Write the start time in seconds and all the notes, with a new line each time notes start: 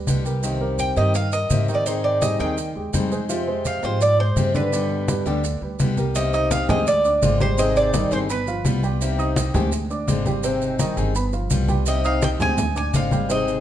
Already playing: G3 G4 B4
0.07 C2 B2 D3 G3 B3 G4, high conga, maracas
0.25 G3 B3 G4 A#4, maracas
0.43 C3 D#3 A#3 C4 D#4 G4 D#5, high conga, maracas
0.61 G3 G4 A#4, high conga
0.79 G5, high conga, maracas
0.96 G2 D#3 A#3 C4 D#4 G4 D#5, high conga, maracas
1.14 F5, muted steel-string acoustic guitar stroke, high conga, maracas
1.32 G3 G4 A#4 D#5, high conga, maracas
1.50 G#2 C3 D#3 A#3 C4 G4, high conga, maracas
1.68 D#3 A#3 C4 D#4 G4 D#5, maracas
1.75 D5
1.86 D#3 C4 D#4 G#4 C5 D#5, high conga, maracas
2.04 D5, high conga
2.22 G3 G4 G#4 D#5, high conga, maracas
2.39 D#2 D#3 G3 C4 D#4 G#4 D#5 G5, maracas
2.58 muted steel-string acoustic guitar stroke, high conga, maracas
2.75 D#2 G#3 G4 G#4, high conga
2.93 F2 D#3 G3 C4 D#4 G#4, high conga, maracas
3.11 G#3 C4 D#4 G#4 C5, maracas
3.29 C3 F3 G#3 C4 F4 G4 F5, high conga, maracas
3.47 G#3 C5, high conga
3.65 F5, high conga, maracas
3.83 G#2 F3 G#3 C4 F4 G4 C5 F5, high conga, maracas
4.01 D5, muted steel-string acoustic guitar stroke, high conga, maracas
4.19 G#3 G#4 C5, high conga
4.36 G2 C3 F3 G#3 C4 G4, high conga, maracas
4.54 D3 G#3 C4 D4 G4 B4 D5, high conga, maracas
4.72 B2 D3 G3 B3 D4 G4 D5, high conga, maracas
4.90 high conga
5.08 G3 G4 B4, high conga, maracas
5.26 D2 D3 G3 B3 D4 G4 D5, maracas
5.44 muted steel-string acoustic guitar stroke, high conga, maracas
5.61 D2 G3 G4 B4, high conga
5.79 C2 B2 D3 G3 B3 G4, high conga, maracas
5.97 G3 B3 G4 A#4, high conga, maracas
6.15 C3 D#3 A#3 C4 G4 D#5, high conga, maracas
6.33 D#4 D#5 D#6, high conga, maracas
6.51 D#3 A#3 C4 G4 F5, high conga, maracas
6.69 D2 D#3 G#3 A#3 C4 G4 G#4 D#5 G#5, high conga, low conga, maracas
6.87 D5, muted steel-string acoustic guitar stroke, high conga, maracas
7.05 D4 D5 D6, high conga, maracas
7.22 G#1 D3 G#3 C4 F4, high conga, maracas
7.40 G3 G#3 C4 F4 G4 C5 G5, high conga, maracas
7.57 C3 D#3 C4 D#4 G#4 C5 D#5, maracas
7.76 D5, high conga, maracas
7.93 D#3 G3 C4 D#4 G#4 D#5, high conga, maracas
8.11 G1 G3 C4 D#4 G#4 C5, high conga, maracas
8.29 B3 B4 B5, muted steel-string acoustic guitar stroke, high conga, maracas
8.47 F3 F4 F5, high conga, maracas
8.64 C2 G3 B3 F4, high conga, maracas
8.83 G3 B3 F4 G4 G5, maracas
9.01 C3 D#3 A#3 C4 G4, high conga, maracas
9.18 D#4 D#5 D#6, high conga, maracas
9.36 D#3 A#3 C4 G4, high conga, maracas
9.54 D2 D#3 G#3 A#3 C4 G4 G#4 G#5, high conga, low conga, maracas
9.72 muted steel-string acoustic guitar stroke, high conga, maracas
9.90 D4 D5 D6, high conga, maracas
10.07 G#1 D3 G#3 C4 F4, high conga, maracas
10.26 G3 G#3 C4 F4 G4 G5, high conga, maracas
10.43 C3 D#3 C4 D#4 G#4 C5, high conga, maracas
10.62 high conga, maracas
10.79 D#3 G3 C4 D#4 G#4 D#5, high conga, maracas
10.97 G1 G3 C4 D#4 G#4, high conga, maracas
11.15 B3 B4 B5, muted steel-string acoustic guitar stroke, high conga, maracas
11.33 F3 F4 F5, high conga, maracas
11.50 C2 G3 B3 F4, high conga, maracas
11.68 G3 B3 F4 G4 G5, high conga, maracas
11.86 C3 D#3 A#3 C4 G4 D#5, high conga, maracas
12.04 D#4 D#5 F5 D#6, high conga, maracas
12.22 D#3 A#3 C4 G4 G5, high conga, maracas
12.40 D2 D#3 G#3 A#3 C4 G4 G#4 G#5, high conga, low conga, maracas
12.58 muted steel-string acoustic guitar stroke, high conga, low conga, maracas
12.76 D4 D5 G#5 D6, high conga, maracas
12.93 G#1 D3 G#3 C4 F4 F5, high conga, maracas
13.11 G3 G#3 C4 F4 G4 G5, high conga, maracas
13.29 C3 D#3 C4 D#4 G#4 C5 D#5, maracas
13.47 high conga, maracas